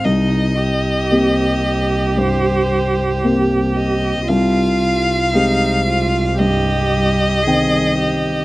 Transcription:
<<
  \new Staff \with { instrumentName = "Violin" } { \time 4/4 \key aes \major \tempo 4 = 57 ees''2 c''4 r8 ees''8 | f''2 ees''2 | }
  \new Staff \with { instrumentName = "Cello" } { \time 4/4 \key aes \major ees'8 g'2.~ g'8 | f'4 ees'8 f'8 g'4 aes'8 g'8 | }
  \new Staff \with { instrumentName = "Upright piano" } { \time 4/4 \key aes \major c,4 <bes c' g'>4 g,4 <bes c' g'>4 | c,4 <aes c' g'>4 g,4 <ees c' g''>4 | }
  \new Staff \with { instrumentName = "Double bass" } { \clef bass \time 4/4 \key aes \major c,1 | c,1 | }
>>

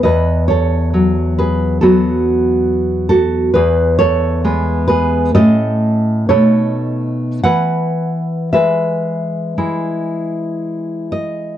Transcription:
\new Staff \with { instrumentName = "Nylon-string guitar" } { \time 4/4 \key e \major \tempo 4 = 65 << { <b' dis''>8 <a' cis''>4 <gis' b'>8 <fis' a'>4. <fis' a'>8 | <gis' b'>8 <a' cis''>4 <gis' b'>8 <a' dis''>4 <a' cis''>4 | <b' fis''>4 <b' e''>2 r8 dis''8 | } \\ { e,4 fis4 <fis b>2 | e,4 <gis b>4 <a, a cis'>4 <b, a dis'>4 | e4 gis4 <gis e'>2 | } >> }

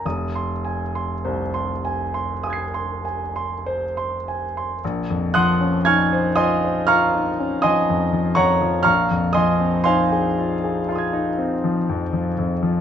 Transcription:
<<
  \new Staff \with { instrumentName = "Grand piano" } { \time 4/4 \key bes \minor \tempo 4 = 59 << { r2 <aes'' ees''' aes''' c''''>2 | r1 | r2 <f'' c''' ees''' aes'''>2 | } \\ { ees'''16 c'''16 aes''16 c'''16 c''16 c'''16 aes''16 c'''16 ees'''16 c'''16 aes''16 c'''16 c''16 c'''16 aes''16 c'''16 | r8 <ges'' c''' ees''' ges'''>8 <aes'' des''' f''' aes'''>8 <ees'' aes'' c''' ees'''>8 <f'' bes'' des''' f'''>8. <ees'' aes'' c''' ees'''>8. <des'' ges'' bes'' des'''>8 | <f'' bes'' des''' f'''>8 <ees'' aes'' c''' ees'''>8 <c'' f'' aes'' c'''>2~ <c'' f'' aes'' c'''>8 r8 | } >> }
  \new Staff \with { instrumentName = "Grand piano" } { \clef bass \time 4/4 \key bes \minor f,,4 c,2. | bes,,16 f,16 f16 des'16 ees'16 c''16 f'16 c''16 f'16 ees'16 des'16 f16 f,16 f16 f,16 f16 | bes,,16 f,16 f16 c'16 ees'16 aes'16 f'16 aes'16 f'16 ees'16 c'16 f16 f,16 f16 f,16 f16 | }
>>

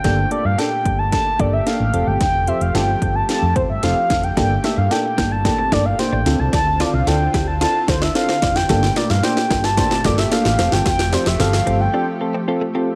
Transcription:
<<
  \new Staff \with { instrumentName = "Soft synth lead" } { \time 4/4 \key g \minor \tempo 4 = 111 g''8 d''16 f''16 g''8. a''16 a''8 d''16 e''16 f''8. g''16 | g''8 e''16 f''16 g''8. a''16 a''8 c''16 e''16 f''8. g''16 | g''8 e''16 f''16 g''8. a''16 a''8 d''16 f''16 g''8. a''16 | a''8 d''16 f''16 g''8. a''16 a''8 c''16 e''16 f''8. g''16 |
g''8 d''16 f''16 g''8. a''16 a''8 d''16 e''16 f''8. g''16 | g''8 c''16 e''16 f''8. g''16 g''8 r4. | }
  \new Staff \with { instrumentName = "Synth keys" } { \time 4/4 \key g \minor <bes d' g' a'>8 <bes d' g' a'>8 <bes d' g' a'>8 <bes d' g' a'>8 <bes d' g' a'>8 <bes d' g' a'>8 <bes d' g' a'>8 <c' f' g' a'>8~ | <c' f' g' a'>8 <c' f' g' c''>8 <c' f' g' a'>8 <c' f' g' a'>8 <c' f' g' a'>8 <c' f' g' a'>8 <c' f' g' a'>8 <c' f' g' a'>8 | <bes d' g' a'>8 <bes d' g' a'>8 <bes d' g' a'>8 <bes d' g' a'>8 <bes d' g' a'>8 <bes d' g' a'>8 <bes d' g' c''>8 <c' d' f' a'>8~ | <c' d' f' a'>8 <c' d' f' a'>8 <c' d' f' a'>8 <c' d' f' a'>8 <c' d' f' a'>8 <c' d' f' a'>8 <c' d' f' a'>8 <c' d' f' g'>8 |
<bes d' g' a'>8 <bes d' g' bes'>8 <bes d' g' c''>8 <bes d' g' a'>8 <bes d' g' c''>8 <bes d' g' a'>8 <bes d' g' a'>8 <c' f' g' a'>8~ | <c' f' g' a'>8 <c' f' g' c''>8 <c' f' g' a'>8 <c' f' g' a'>8 <c' f' g' a'>8 <c' f' g' a'>8 <c' f' g' a'>8 <c' f' g' a'>8 | }
  \new Staff \with { instrumentName = "Clean electric guitar" } { \time 4/4 \key g \minor r1 | r1 | g16 r16 a16 r8. bes16 r8 c'16 d'16 r8 d'16 c'16 r16 | d'16 r16 f'16 r8. g'16 r16 f'16 r8 d'16 r16 c'16 d'16 r16 |
g16 r16 a16 r8. bes16 r8 c'16 d'16 r8 d'16 c'16 r16 | f'16 r16 d'16 r8. c'16 r16 d'16 r8 c'16 r16 a16 c'16 r16 | }
  \new Staff \with { instrumentName = "Analog synth pad" } { \clef bass \time 4/4 \key g \minor << { <a g'>1~ | <a g'>1~ | <a g'>2.~ <a g'>8 <c' f'>8~ | <c' f'>1 |
<a g'>1~ | <a g'>1 | } \\ { bes,2.~ bes,8 f8~ | f1 | bes,2.~ bes,8 d8~ | d1 |
bes,2.~ bes,8 f8~ | f1 | } >> }
  \new Staff \with { instrumentName = "Fretless electric bass" } { \clef bass \time 4/4 \key g \minor g,,8 r16 g,16 r8 g,,8. r16 g,,8 r16 a,,16 f,,16 g,,16 | f,,8. f,,16 g,,8 g,,8 r16 f,16 f,,16 g,,16 f,,16 r16 f,,8 | g,,8 r16 g,16 r8 g,,8. r16 g,,8 r16 a,,16 d,16 c,16 | d,8. c,16 d,8 d,8. r16 d,8 r8 f,,8 |
g,,8 r16 g,16 r8 g,,8. r16 g,,8 r16 a,,16 f,,16 g,,16 | f,,8. f,,16 g,,8 g,,8 r2 | }
  \new DrumStaff \with { instrumentName = "Drums" } \drummode { \time 4/4 <hh bd sn>8 hh8 <hh sn>8 <hh bd>8 <hh bd sn>8 <hh bd>8 <hh sn>8 hh8 | <hh bd sn>8 hh16 hh16 <hh sn>8 <hh bd>8 <hh sn>8 <hh bd>8 <hh sn>8 <hh bd sn>16 hh16 | <hh bd sn>8 <hh sn>8 <hh sn>8 <hh bd sn>8 <hh bd sn>8 <hh bd sn>8 <hh sn>8 <hh sn>8 | <hh bd sn>8 <hh sn>8 <hh sn>8 <hh bd sn>8 <hh sn>8 <hh bd sn>16 sn16 <hh sn>16 sn16 <hh bd sn>16 sn16 |
<hh bd sn>16 sn16 <hh sn>16 sn16 <hh sn>16 sn16 <hh bd sn>16 sn16 <hh bd sn>16 sn16 <hh bd sn>16 sn16 <hh sn>16 sn16 <hh sn>16 sn16 | <hh bd sn>16 sn16 <hh sn>16 <hh sn>16 <hh sn>16 sn16 hh8 r4 r4 | }
>>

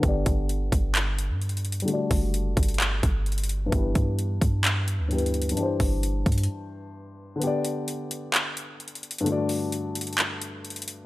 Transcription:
<<
  \new Staff \with { instrumentName = "Grand piano" } { \time 4/4 \key g \major \tempo 4 = 130 <d b g' d''>1 | <d g a fis' d''>1 | <g, e b g' b'>2. <g, e b g' b'>4 | <g, e d' g' c''>1 |
<d b g' d''>1 | <g, d a fis' d''>1 | }
  \new Staff \with { instrumentName = "808-style bass" } { \clef bass \time 4/4 \key g \major g,,8 g,,4 g,,4~ g,,16 g,4~ g,16 | r8 fis,,4 g,,4 g,,4. | g,,8 g,4 g,4~ g,16 d,4~ d,16 | r8 g,,4 g,8 r2 |
r1 | r1 | }
  \new DrumStaff \with { instrumentName = "Drums" } \drummode { \time 4/4 <hh bd>8 <hh bd>8 hh8 <hh bd>8 <hc hh>8 hh8 \tuplet 3/2 { hh16 hh16 hh16 hh16 hh16 hh16 } | hh8 <hho bd>8 hh8 <hh bd>32 hh32 hh32 hh32 <hc hh>8 <hh bd>8 hh32 hh32 hh32 hh32 hh8 | <hh bd>8 <hh bd>8 hh8 <hh bd>8 <hc hh>8 hh8 \tuplet 3/2 { hh16 hh16 hh16 hh16 hh16 hh16 } | hh8 <hho bd>8 hh8 <hh bd>32 hh32 hh32 hh32 r4 r4 |
hh8 hh8 hh8 hh8 <hc hh>8 hh8 \tuplet 3/2 { hh16 hh16 hh16 hh16 hh16 hh16 } | hh8 hho8 hh8 hh32 hh32 hh32 hh32 <hc hh>8 hh8 hh32 hh32 hh32 hh32 hh8 | }
>>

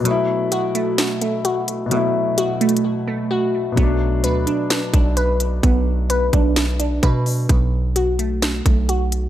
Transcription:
<<
  \new Staff \with { instrumentName = "Synth pluck" } { \time 4/4 \key b \minor \tempo 4 = 129 b,4 fis'8 a4 a8 fis'4 | b,4 fis'8 a4 a8 fis'4 | b4 b'8 d'4 d'8 b'4 | b4 b'8 d'4 d'8 b'4 |
b,4 fis'8 a4 a8 fis'4 | }
  \new Staff \with { instrumentName = "Grand piano" } { \clef bass \time 4/4 \key b \minor <b, fis a e'>1 | <b, fis a e'>1 | <b, fis a d'>1 | r1 |
r1 | }
  \new Staff \with { instrumentName = "808-style bass" } { \clef bass \time 4/4 \key b \minor r1 | r1 | b,,4 d,8 r4 b,,4. | b,,4. b,,4. b,4 |
b,,2~ b,,8 b,,4. | }
  \new DrumStaff \with { instrumentName = "Drums" } \drummode { \time 4/4 hh4 hh8 hh8 <hh sn>8 hh8 hh8 hh8 | hh4 \tuplet 3/2 { hh16 r16 r16 hh16 hh16 hh16 } r4 r4 | <hh bd>4 hh8 hh8 <hh sn>8 <hh bd>8 hh8 hh8 | <hh bd>4 hh8 <hh bd>8 <hh sn>8 hh8 <hh bd>8 hho8 |
<hh bd>4 hh8 hh8 <hh sn>8 <hh bd>8 hh8 hh8 | }
>>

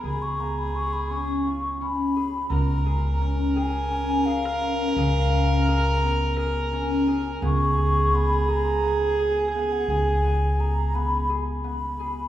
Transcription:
<<
  \new Staff \with { instrumentName = "Flute" } { \time 7/8 \key des \mixolydian \tempo 4 = 85 ces'''16 des'''16 bes''16 ces'''16 des'''16 ces'''16 des'''4 ces'''4 | bes''4 r8 aes''4 f''4 | f''4. r4 aes''4 | des'''4 ces'''8 bes''8. aes''4 ges''16 |
aes''4 bes''8 ces'''8 r8 ces'''4 | }
  \new Staff \with { instrumentName = "Viola" } { \time 7/8 \key des \mixolydian aes'2. r8 | bes'2.~ bes'8~ | bes'2.~ bes'8 | aes'2.~ aes'8~ |
aes'2. r8 | }
  \new Staff \with { instrumentName = "Harp" } { \time 7/8 \key des \mixolydian aes'8 ces'8 aes'8 des'8 f'8 des'8 aes'8 | ces'8 aes'8 des'8 aes'8 des'8 aes'8 des'8 | aes'8 des'8 aes'8 ces'8 aes'8 des'8 aes'8 | ces'8 aes'8 ces'8 aes'8 ces'8 aes'8 ces'8 |
aes'8 ces'8 aes'8 ces'8 aes'8 ces'8 aes'8 | }
  \new Staff \with { instrumentName = "Upright bass" } { \clef bass \time 7/8 \key des \mixolydian des,2.~ des,8 | des,2.~ des,8 | des,2.~ des,8 | des,2.~ des,8 |
des,2.~ des,8 | }
>>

